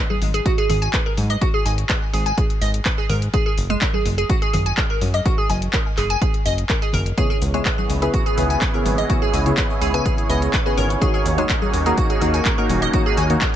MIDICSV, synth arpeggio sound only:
0, 0, Header, 1, 2, 480
1, 0, Start_track
1, 0, Tempo, 480000
1, 1417, Time_signature, 4, 2, 24, 8
1, 13558, End_track
2, 0, Start_track
2, 0, Title_t, "Synth arpeggio sound"
2, 0, Program_c, 0, 84
2, 100, Note_on_c, 0, 68, 76
2, 192, Note_off_c, 0, 68, 0
2, 340, Note_on_c, 0, 68, 72
2, 432, Note_off_c, 0, 68, 0
2, 456, Note_on_c, 0, 66, 98
2, 522, Note_off_c, 0, 66, 0
2, 581, Note_on_c, 0, 68, 100
2, 672, Note_off_c, 0, 68, 0
2, 695, Note_on_c, 0, 68, 78
2, 762, Note_off_c, 0, 68, 0
2, 819, Note_on_c, 0, 80, 78
2, 912, Note_off_c, 0, 80, 0
2, 934, Note_on_c, 0, 71, 82
2, 975, Note_off_c, 0, 71, 0
2, 1060, Note_on_c, 0, 70, 71
2, 1122, Note_off_c, 0, 70, 0
2, 1299, Note_on_c, 0, 75, 77
2, 1361, Note_off_c, 0, 75, 0
2, 1413, Note_on_c, 0, 66, 102
2, 1481, Note_off_c, 0, 66, 0
2, 1539, Note_on_c, 0, 68, 108
2, 1632, Note_off_c, 0, 68, 0
2, 1655, Note_on_c, 0, 80, 77
2, 1722, Note_off_c, 0, 80, 0
2, 1893, Note_on_c, 0, 71, 82
2, 1935, Note_off_c, 0, 71, 0
2, 2134, Note_on_c, 0, 68, 77
2, 2235, Note_off_c, 0, 68, 0
2, 2260, Note_on_c, 0, 80, 99
2, 2352, Note_off_c, 0, 80, 0
2, 2375, Note_on_c, 0, 68, 82
2, 2442, Note_off_c, 0, 68, 0
2, 2615, Note_on_c, 0, 75, 78
2, 2655, Note_off_c, 0, 75, 0
2, 2856, Note_on_c, 0, 71, 82
2, 2896, Note_off_c, 0, 71, 0
2, 2980, Note_on_c, 0, 68, 76
2, 3042, Note_off_c, 0, 68, 0
2, 3095, Note_on_c, 0, 70, 75
2, 3136, Note_off_c, 0, 70, 0
2, 3335, Note_on_c, 0, 68, 101
2, 3435, Note_off_c, 0, 68, 0
2, 3460, Note_on_c, 0, 68, 81
2, 3522, Note_off_c, 0, 68, 0
2, 3699, Note_on_c, 0, 56, 104
2, 3737, Note_off_c, 0, 56, 0
2, 3815, Note_on_c, 0, 70, 82
2, 3855, Note_off_c, 0, 70, 0
2, 3939, Note_on_c, 0, 68, 77
2, 4032, Note_off_c, 0, 68, 0
2, 4180, Note_on_c, 0, 68, 72
2, 4272, Note_off_c, 0, 68, 0
2, 4294, Note_on_c, 0, 66, 97
2, 4361, Note_off_c, 0, 66, 0
2, 4420, Note_on_c, 0, 68, 104
2, 4512, Note_off_c, 0, 68, 0
2, 4534, Note_on_c, 0, 68, 76
2, 4602, Note_off_c, 0, 68, 0
2, 4660, Note_on_c, 0, 80, 79
2, 4752, Note_off_c, 0, 80, 0
2, 4774, Note_on_c, 0, 70, 84
2, 4815, Note_off_c, 0, 70, 0
2, 4899, Note_on_c, 0, 70, 78
2, 4961, Note_off_c, 0, 70, 0
2, 5141, Note_on_c, 0, 75, 74
2, 5202, Note_off_c, 0, 75, 0
2, 5255, Note_on_c, 0, 66, 102
2, 5322, Note_off_c, 0, 66, 0
2, 5379, Note_on_c, 0, 68, 105
2, 5472, Note_off_c, 0, 68, 0
2, 5495, Note_on_c, 0, 80, 79
2, 5562, Note_off_c, 0, 80, 0
2, 5735, Note_on_c, 0, 70, 84
2, 5776, Note_off_c, 0, 70, 0
2, 5976, Note_on_c, 0, 68, 78
2, 6076, Note_off_c, 0, 68, 0
2, 6101, Note_on_c, 0, 80, 99
2, 6193, Note_off_c, 0, 80, 0
2, 6215, Note_on_c, 0, 68, 82
2, 6282, Note_off_c, 0, 68, 0
2, 6455, Note_on_c, 0, 75, 79
2, 6496, Note_off_c, 0, 75, 0
2, 6694, Note_on_c, 0, 70, 81
2, 6735, Note_off_c, 0, 70, 0
2, 6820, Note_on_c, 0, 68, 76
2, 6882, Note_off_c, 0, 68, 0
2, 6936, Note_on_c, 0, 70, 80
2, 6976, Note_off_c, 0, 70, 0
2, 7175, Note_on_c, 0, 68, 101
2, 7275, Note_off_c, 0, 68, 0
2, 7300, Note_on_c, 0, 68, 81
2, 7362, Note_off_c, 0, 68, 0
2, 7540, Note_on_c, 0, 56, 97
2, 7577, Note_off_c, 0, 56, 0
2, 7655, Note_on_c, 0, 71, 86
2, 7696, Note_off_c, 0, 71, 0
2, 7781, Note_on_c, 0, 68, 76
2, 7873, Note_off_c, 0, 68, 0
2, 8021, Note_on_c, 0, 68, 73
2, 8113, Note_off_c, 0, 68, 0
2, 8136, Note_on_c, 0, 66, 105
2, 8202, Note_off_c, 0, 66, 0
2, 8261, Note_on_c, 0, 68, 106
2, 8353, Note_off_c, 0, 68, 0
2, 8374, Note_on_c, 0, 68, 76
2, 8442, Note_off_c, 0, 68, 0
2, 8500, Note_on_c, 0, 80, 79
2, 8592, Note_off_c, 0, 80, 0
2, 8615, Note_on_c, 0, 71, 86
2, 8656, Note_off_c, 0, 71, 0
2, 8740, Note_on_c, 0, 70, 74
2, 8802, Note_off_c, 0, 70, 0
2, 8980, Note_on_c, 0, 75, 76
2, 9042, Note_off_c, 0, 75, 0
2, 9095, Note_on_c, 0, 66, 104
2, 9162, Note_off_c, 0, 66, 0
2, 9219, Note_on_c, 0, 68, 106
2, 9312, Note_off_c, 0, 68, 0
2, 9335, Note_on_c, 0, 80, 78
2, 9402, Note_off_c, 0, 80, 0
2, 9575, Note_on_c, 0, 71, 84
2, 9616, Note_off_c, 0, 71, 0
2, 9815, Note_on_c, 0, 68, 78
2, 9915, Note_off_c, 0, 68, 0
2, 9940, Note_on_c, 0, 80, 102
2, 10032, Note_off_c, 0, 80, 0
2, 10055, Note_on_c, 0, 68, 84
2, 10122, Note_off_c, 0, 68, 0
2, 10294, Note_on_c, 0, 75, 76
2, 10335, Note_off_c, 0, 75, 0
2, 10534, Note_on_c, 0, 71, 83
2, 10575, Note_off_c, 0, 71, 0
2, 10658, Note_on_c, 0, 68, 75
2, 10721, Note_off_c, 0, 68, 0
2, 10774, Note_on_c, 0, 70, 81
2, 10815, Note_off_c, 0, 70, 0
2, 11014, Note_on_c, 0, 68, 105
2, 11114, Note_off_c, 0, 68, 0
2, 11140, Note_on_c, 0, 68, 82
2, 11202, Note_off_c, 0, 68, 0
2, 11380, Note_on_c, 0, 56, 101
2, 11417, Note_off_c, 0, 56, 0
2, 11495, Note_on_c, 0, 70, 85
2, 11536, Note_off_c, 0, 70, 0
2, 11619, Note_on_c, 0, 68, 75
2, 11712, Note_off_c, 0, 68, 0
2, 11859, Note_on_c, 0, 68, 73
2, 11952, Note_off_c, 0, 68, 0
2, 11975, Note_on_c, 0, 66, 106
2, 12042, Note_off_c, 0, 66, 0
2, 12098, Note_on_c, 0, 68, 102
2, 12192, Note_off_c, 0, 68, 0
2, 12214, Note_on_c, 0, 68, 81
2, 12281, Note_off_c, 0, 68, 0
2, 12340, Note_on_c, 0, 80, 78
2, 12432, Note_off_c, 0, 80, 0
2, 12455, Note_on_c, 0, 70, 88
2, 12495, Note_off_c, 0, 70, 0
2, 12580, Note_on_c, 0, 70, 75
2, 12642, Note_off_c, 0, 70, 0
2, 12820, Note_on_c, 0, 75, 80
2, 12882, Note_off_c, 0, 75, 0
2, 12936, Note_on_c, 0, 66, 105
2, 13002, Note_off_c, 0, 66, 0
2, 13061, Note_on_c, 0, 68, 109
2, 13153, Note_off_c, 0, 68, 0
2, 13176, Note_on_c, 0, 80, 76
2, 13242, Note_off_c, 0, 80, 0
2, 13417, Note_on_c, 0, 70, 82
2, 13456, Note_off_c, 0, 70, 0
2, 13558, End_track
0, 0, End_of_file